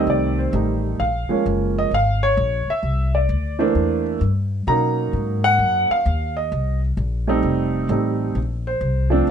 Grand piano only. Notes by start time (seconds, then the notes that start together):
Already playing: D#3 G3 A3 C4
0.10 D5
0.39 C5
0.53 D#3 G3 A3 D#4
1.00 F5
1.29 F3 G#3 A#3 C#4
1.78 D#5
1.94 F5
2.23 C#5
2.70 E5
3.15 D5
3.59 E3 A3 A#3 D4 C5
4.67 F#3 A#3 C#4 D#4 A#5
5.44 F#5
5.91 F5
6.37 D#5
7.28 G3 A3 C4 D#4
7.90 G3 A3 C4 D#4
8.67 C5
9.10 F3 A3 C4 D4